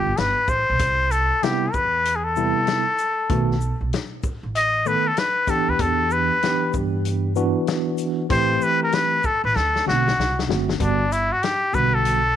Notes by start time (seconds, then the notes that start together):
Already playing: D3 G3 B3 F4 G4
0.06 G1
0.17 G1 B4, snare, closed hi-hat
0.48 A1 C5, kick, shaker
0.70 B1
0.79 C2, kick, closed hi-hat
1.11 A4, closed hi-hat, shaker
1.42 C3 G3 B3 E4 G4, snare, closed hi-hat
1.73 E2 B4, kick, shaker
2.05 closed hi-hat
2.16 G#4
2.24 A4
2.36 C3 G3 B3 E4, shaker
2.67 snare, closed hi-hat
2.98 closed hi-hat, shaker
3.29 B1 D#3 A3 B3 F#4, kick, closed hi-hat
3.51 snare
3.61 shaker
3.81 B1
3.93 snare, closed hi-hat
4.23 kick, shaker
4.43 A1
4.55 D#5, closed hi-hat
4.85 D#3 A3 B3 A4 B4, shaker
5.08 A4
5.17 B4, snare, closed hi-hat
5.47 E3 B3 D4 G4 A4, kick, closed hi-hat, shaker
5.68 D#2 B4
5.79 E2 A4, kick, closed hi-hat
6.11 B4, shaker
6.43 E3 B3 D4 G4, snare, closed hi-hat
6.74 G2, kick, shaker
7.05 closed hi-hat
7.36 E3 B3 D4 F#4, shaker
7.67 snare, closed hi-hat
7.98 closed hi-hat, shaker
8.30 A1 E3 A3 C4 G4 C5, kick, closed hi-hat
8.61 B4, shaker
8.83 A#4
8.92 B4, snare, closed hi-hat
9.23 A4, kick, shaker
9.44 A1 B4
9.56 D2 A4, snare
9.76 snare
9.86 B1 D3 A3 C4 F#4, snare
10.08 snare
10.18 C2, snare
10.39 snare
10.47 F#1 D3 A3 C4 F#4, snare
10.69 snare
10.79 G1 D3 G3 B3 D4 F#4, kick, closed hi-hat
11.12 E4, closed hi-hat, shaker
11.32 F#4
11.43 G4, snare, closed hi-hat
11.73 B1 D3 G3 B3 F#4 B4, kick, shaker
11.94 A4
12.05 closed hi-hat